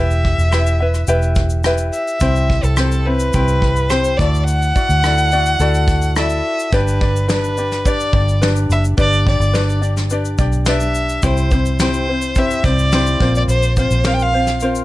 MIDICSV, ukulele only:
0, 0, Header, 1, 2, 480
1, 0, Start_track
1, 0, Key_signature, 1, "major"
1, 0, Tempo, 563222
1, 1891, Time_signature, 4, 2, 24, 8
1, 12651, End_track
2, 0, Start_track
2, 0, Title_t, "Ukulele"
2, 0, Program_c, 0, 24
2, 0, Note_on_c, 0, 64, 79
2, 0, Note_on_c, 0, 67, 76
2, 0, Note_on_c, 0, 71, 71
2, 0, Note_on_c, 0, 76, 86
2, 434, Note_off_c, 0, 67, 0
2, 437, Note_on_c, 0, 67, 59
2, 439, Note_off_c, 0, 71, 0
2, 442, Note_off_c, 0, 64, 0
2, 445, Note_on_c, 0, 64, 68
2, 450, Note_on_c, 0, 71, 71
2, 453, Note_off_c, 0, 76, 0
2, 456, Note_on_c, 0, 76, 70
2, 674, Note_off_c, 0, 76, 0
2, 684, Note_off_c, 0, 67, 0
2, 685, Note_on_c, 0, 76, 60
2, 687, Note_off_c, 0, 71, 0
2, 688, Note_off_c, 0, 64, 0
2, 697, Note_on_c, 0, 71, 51
2, 701, Note_on_c, 0, 64, 49
2, 917, Note_off_c, 0, 71, 0
2, 918, Note_off_c, 0, 64, 0
2, 920, Note_off_c, 0, 76, 0
2, 922, Note_on_c, 0, 67, 85
2, 927, Note_on_c, 0, 71, 104
2, 929, Note_on_c, 0, 64, 83
2, 930, Note_on_c, 0, 76, 100
2, 1396, Note_off_c, 0, 67, 0
2, 1399, Note_on_c, 0, 67, 73
2, 1403, Note_off_c, 0, 71, 0
2, 1404, Note_off_c, 0, 64, 0
2, 1408, Note_on_c, 0, 64, 79
2, 1413, Note_on_c, 0, 71, 75
2, 1415, Note_off_c, 0, 76, 0
2, 1418, Note_on_c, 0, 76, 80
2, 1876, Note_off_c, 0, 67, 0
2, 1884, Note_off_c, 0, 64, 0
2, 1886, Note_on_c, 0, 67, 74
2, 1888, Note_on_c, 0, 60, 83
2, 1891, Note_off_c, 0, 71, 0
2, 1891, Note_off_c, 0, 76, 0
2, 1894, Note_on_c, 0, 72, 83
2, 1895, Note_on_c, 0, 64, 88
2, 2354, Note_off_c, 0, 67, 0
2, 2358, Note_off_c, 0, 60, 0
2, 2364, Note_on_c, 0, 67, 57
2, 2369, Note_on_c, 0, 60, 61
2, 2370, Note_off_c, 0, 64, 0
2, 2371, Note_off_c, 0, 72, 0
2, 2373, Note_on_c, 0, 64, 64
2, 2381, Note_on_c, 0, 72, 69
2, 2596, Note_off_c, 0, 72, 0
2, 2607, Note_off_c, 0, 67, 0
2, 2607, Note_on_c, 0, 72, 54
2, 2608, Note_off_c, 0, 64, 0
2, 2610, Note_off_c, 0, 60, 0
2, 2618, Note_on_c, 0, 64, 55
2, 2623, Note_on_c, 0, 60, 46
2, 2849, Note_off_c, 0, 72, 0
2, 2850, Note_off_c, 0, 60, 0
2, 2850, Note_off_c, 0, 64, 0
2, 2853, Note_on_c, 0, 67, 83
2, 2860, Note_on_c, 0, 60, 82
2, 2860, Note_on_c, 0, 64, 97
2, 3318, Note_off_c, 0, 67, 0
2, 3322, Note_off_c, 0, 60, 0
2, 3328, Note_on_c, 0, 67, 63
2, 3332, Note_on_c, 0, 60, 62
2, 3335, Note_off_c, 0, 64, 0
2, 3339, Note_on_c, 0, 64, 74
2, 3341, Note_on_c, 0, 72, 73
2, 3569, Note_off_c, 0, 67, 0
2, 3571, Note_off_c, 0, 60, 0
2, 3571, Note_off_c, 0, 64, 0
2, 3574, Note_on_c, 0, 74, 75
2, 3576, Note_off_c, 0, 72, 0
2, 3578, Note_on_c, 0, 66, 57
2, 3581, Note_on_c, 0, 64, 55
2, 3585, Note_on_c, 0, 69, 50
2, 4047, Note_off_c, 0, 66, 0
2, 4049, Note_off_c, 0, 69, 0
2, 4052, Note_off_c, 0, 74, 0
2, 4052, Note_on_c, 0, 74, 46
2, 4056, Note_off_c, 0, 64, 0
2, 4057, Note_on_c, 0, 66, 47
2, 4069, Note_on_c, 0, 64, 38
2, 4286, Note_off_c, 0, 64, 0
2, 4287, Note_off_c, 0, 74, 0
2, 4291, Note_off_c, 0, 66, 0
2, 4291, Note_on_c, 0, 69, 57
2, 4296, Note_on_c, 0, 64, 63
2, 4301, Note_on_c, 0, 66, 59
2, 4307, Note_on_c, 0, 74, 59
2, 4530, Note_off_c, 0, 74, 0
2, 4531, Note_off_c, 0, 69, 0
2, 4533, Note_off_c, 0, 64, 0
2, 4536, Note_off_c, 0, 66, 0
2, 4540, Note_on_c, 0, 74, 55
2, 4546, Note_on_c, 0, 66, 52
2, 4555, Note_on_c, 0, 64, 50
2, 4768, Note_off_c, 0, 64, 0
2, 4771, Note_off_c, 0, 74, 0
2, 4773, Note_off_c, 0, 66, 0
2, 4775, Note_on_c, 0, 69, 93
2, 4779, Note_on_c, 0, 64, 84
2, 4783, Note_on_c, 0, 66, 107
2, 4785, Note_on_c, 0, 74, 95
2, 5239, Note_off_c, 0, 69, 0
2, 5247, Note_off_c, 0, 64, 0
2, 5248, Note_off_c, 0, 66, 0
2, 5250, Note_on_c, 0, 69, 70
2, 5258, Note_on_c, 0, 64, 85
2, 5258, Note_on_c, 0, 66, 75
2, 5264, Note_off_c, 0, 74, 0
2, 5267, Note_on_c, 0, 74, 78
2, 5730, Note_off_c, 0, 69, 0
2, 5731, Note_off_c, 0, 64, 0
2, 5733, Note_off_c, 0, 66, 0
2, 5735, Note_on_c, 0, 71, 75
2, 5736, Note_off_c, 0, 74, 0
2, 5736, Note_on_c, 0, 62, 89
2, 5739, Note_on_c, 0, 67, 85
2, 5744, Note_on_c, 0, 74, 88
2, 5963, Note_off_c, 0, 74, 0
2, 5972, Note_off_c, 0, 67, 0
2, 5973, Note_off_c, 0, 62, 0
2, 5973, Note_off_c, 0, 71, 0
2, 5973, Note_on_c, 0, 74, 48
2, 5982, Note_on_c, 0, 67, 51
2, 5988, Note_on_c, 0, 62, 39
2, 6198, Note_off_c, 0, 62, 0
2, 6204, Note_off_c, 0, 67, 0
2, 6207, Note_off_c, 0, 74, 0
2, 6207, Note_on_c, 0, 71, 71
2, 6208, Note_on_c, 0, 62, 86
2, 6214, Note_on_c, 0, 67, 75
2, 6217, Note_on_c, 0, 74, 78
2, 6445, Note_off_c, 0, 74, 0
2, 6449, Note_off_c, 0, 62, 0
2, 6449, Note_off_c, 0, 71, 0
2, 6452, Note_off_c, 0, 67, 0
2, 6456, Note_on_c, 0, 74, 51
2, 6464, Note_on_c, 0, 67, 55
2, 6474, Note_on_c, 0, 62, 40
2, 6689, Note_off_c, 0, 62, 0
2, 6693, Note_off_c, 0, 74, 0
2, 6694, Note_on_c, 0, 71, 62
2, 6695, Note_off_c, 0, 67, 0
2, 6699, Note_on_c, 0, 62, 65
2, 6705, Note_on_c, 0, 67, 74
2, 6711, Note_on_c, 0, 74, 70
2, 6924, Note_off_c, 0, 74, 0
2, 6931, Note_off_c, 0, 67, 0
2, 6932, Note_off_c, 0, 71, 0
2, 6934, Note_on_c, 0, 74, 59
2, 6935, Note_off_c, 0, 62, 0
2, 6942, Note_on_c, 0, 67, 53
2, 6950, Note_on_c, 0, 62, 53
2, 7167, Note_off_c, 0, 62, 0
2, 7169, Note_off_c, 0, 67, 0
2, 7172, Note_off_c, 0, 74, 0
2, 7172, Note_on_c, 0, 71, 86
2, 7177, Note_on_c, 0, 62, 90
2, 7179, Note_on_c, 0, 67, 86
2, 7184, Note_on_c, 0, 74, 95
2, 7637, Note_off_c, 0, 71, 0
2, 7641, Note_off_c, 0, 62, 0
2, 7647, Note_on_c, 0, 71, 80
2, 7648, Note_off_c, 0, 74, 0
2, 7649, Note_off_c, 0, 67, 0
2, 7651, Note_on_c, 0, 62, 76
2, 7652, Note_on_c, 0, 67, 97
2, 7658, Note_on_c, 0, 74, 81
2, 7885, Note_off_c, 0, 74, 0
2, 7889, Note_off_c, 0, 71, 0
2, 7891, Note_off_c, 0, 62, 0
2, 7891, Note_off_c, 0, 67, 0
2, 7895, Note_on_c, 0, 74, 55
2, 7904, Note_on_c, 0, 67, 52
2, 7907, Note_on_c, 0, 62, 38
2, 8120, Note_off_c, 0, 62, 0
2, 8125, Note_on_c, 0, 71, 80
2, 8127, Note_off_c, 0, 67, 0
2, 8130, Note_off_c, 0, 74, 0
2, 8130, Note_on_c, 0, 62, 88
2, 8138, Note_on_c, 0, 67, 72
2, 8140, Note_on_c, 0, 74, 93
2, 8354, Note_off_c, 0, 74, 0
2, 8361, Note_off_c, 0, 67, 0
2, 8365, Note_on_c, 0, 74, 57
2, 8368, Note_off_c, 0, 71, 0
2, 8370, Note_off_c, 0, 62, 0
2, 8372, Note_on_c, 0, 67, 53
2, 8379, Note_on_c, 0, 62, 41
2, 8608, Note_off_c, 0, 74, 0
2, 8610, Note_off_c, 0, 62, 0
2, 8611, Note_off_c, 0, 67, 0
2, 8614, Note_on_c, 0, 71, 67
2, 8621, Note_on_c, 0, 62, 73
2, 8627, Note_on_c, 0, 67, 72
2, 8630, Note_on_c, 0, 74, 74
2, 8840, Note_off_c, 0, 74, 0
2, 8850, Note_on_c, 0, 74, 62
2, 8852, Note_off_c, 0, 71, 0
2, 8855, Note_off_c, 0, 67, 0
2, 8856, Note_off_c, 0, 62, 0
2, 8865, Note_on_c, 0, 67, 68
2, 8870, Note_on_c, 0, 62, 54
2, 9089, Note_off_c, 0, 67, 0
2, 9090, Note_off_c, 0, 62, 0
2, 9090, Note_off_c, 0, 74, 0
2, 9093, Note_on_c, 0, 71, 80
2, 9099, Note_on_c, 0, 67, 93
2, 9100, Note_on_c, 0, 62, 83
2, 9107, Note_on_c, 0, 74, 93
2, 9565, Note_off_c, 0, 67, 0
2, 9572, Note_off_c, 0, 62, 0
2, 9572, Note_off_c, 0, 71, 0
2, 9575, Note_on_c, 0, 60, 81
2, 9575, Note_on_c, 0, 67, 81
2, 9579, Note_off_c, 0, 74, 0
2, 9582, Note_on_c, 0, 64, 101
2, 9585, Note_on_c, 0, 72, 97
2, 9807, Note_off_c, 0, 72, 0
2, 9812, Note_off_c, 0, 64, 0
2, 9813, Note_off_c, 0, 60, 0
2, 9813, Note_off_c, 0, 67, 0
2, 9817, Note_on_c, 0, 72, 59
2, 9822, Note_on_c, 0, 64, 54
2, 9830, Note_on_c, 0, 60, 44
2, 10054, Note_off_c, 0, 72, 0
2, 10055, Note_off_c, 0, 60, 0
2, 10056, Note_off_c, 0, 64, 0
2, 10061, Note_on_c, 0, 67, 78
2, 10065, Note_on_c, 0, 60, 89
2, 10072, Note_on_c, 0, 64, 93
2, 10074, Note_on_c, 0, 72, 80
2, 10293, Note_off_c, 0, 72, 0
2, 10296, Note_off_c, 0, 67, 0
2, 10298, Note_off_c, 0, 60, 0
2, 10299, Note_off_c, 0, 64, 0
2, 10303, Note_on_c, 0, 72, 55
2, 10309, Note_on_c, 0, 64, 47
2, 10319, Note_on_c, 0, 60, 46
2, 10537, Note_off_c, 0, 72, 0
2, 10540, Note_off_c, 0, 60, 0
2, 10540, Note_off_c, 0, 64, 0
2, 10542, Note_on_c, 0, 67, 59
2, 10550, Note_on_c, 0, 60, 64
2, 10554, Note_on_c, 0, 64, 69
2, 10557, Note_on_c, 0, 72, 79
2, 10768, Note_off_c, 0, 72, 0
2, 10776, Note_off_c, 0, 64, 0
2, 10777, Note_off_c, 0, 67, 0
2, 10778, Note_on_c, 0, 72, 59
2, 10781, Note_off_c, 0, 60, 0
2, 10786, Note_on_c, 0, 64, 57
2, 10795, Note_on_c, 0, 60, 48
2, 11013, Note_off_c, 0, 60, 0
2, 11015, Note_off_c, 0, 72, 0
2, 11016, Note_on_c, 0, 67, 75
2, 11019, Note_off_c, 0, 64, 0
2, 11023, Note_on_c, 0, 60, 83
2, 11028, Note_on_c, 0, 64, 96
2, 11033, Note_on_c, 0, 72, 91
2, 11247, Note_off_c, 0, 72, 0
2, 11254, Note_off_c, 0, 67, 0
2, 11257, Note_off_c, 0, 60, 0
2, 11258, Note_on_c, 0, 72, 71
2, 11259, Note_off_c, 0, 64, 0
2, 11264, Note_on_c, 0, 65, 70
2, 11268, Note_on_c, 0, 60, 61
2, 11269, Note_on_c, 0, 70, 61
2, 11726, Note_off_c, 0, 72, 0
2, 11734, Note_off_c, 0, 65, 0
2, 11736, Note_on_c, 0, 72, 51
2, 11740, Note_off_c, 0, 60, 0
2, 11740, Note_off_c, 0, 70, 0
2, 11744, Note_on_c, 0, 65, 53
2, 11750, Note_on_c, 0, 60, 40
2, 11965, Note_off_c, 0, 60, 0
2, 11971, Note_off_c, 0, 65, 0
2, 11974, Note_off_c, 0, 72, 0
2, 11975, Note_on_c, 0, 70, 81
2, 11976, Note_on_c, 0, 60, 78
2, 11981, Note_on_c, 0, 65, 83
2, 11985, Note_on_c, 0, 72, 83
2, 12209, Note_off_c, 0, 72, 0
2, 12213, Note_off_c, 0, 70, 0
2, 12214, Note_off_c, 0, 60, 0
2, 12217, Note_off_c, 0, 65, 0
2, 12220, Note_on_c, 0, 72, 55
2, 12230, Note_on_c, 0, 65, 44
2, 12236, Note_on_c, 0, 60, 42
2, 12451, Note_off_c, 0, 60, 0
2, 12456, Note_off_c, 0, 72, 0
2, 12457, Note_off_c, 0, 65, 0
2, 12461, Note_on_c, 0, 70, 58
2, 12462, Note_on_c, 0, 60, 67
2, 12468, Note_on_c, 0, 65, 71
2, 12476, Note_on_c, 0, 72, 71
2, 12651, Note_off_c, 0, 60, 0
2, 12651, Note_off_c, 0, 65, 0
2, 12651, Note_off_c, 0, 70, 0
2, 12651, Note_off_c, 0, 72, 0
2, 12651, End_track
0, 0, End_of_file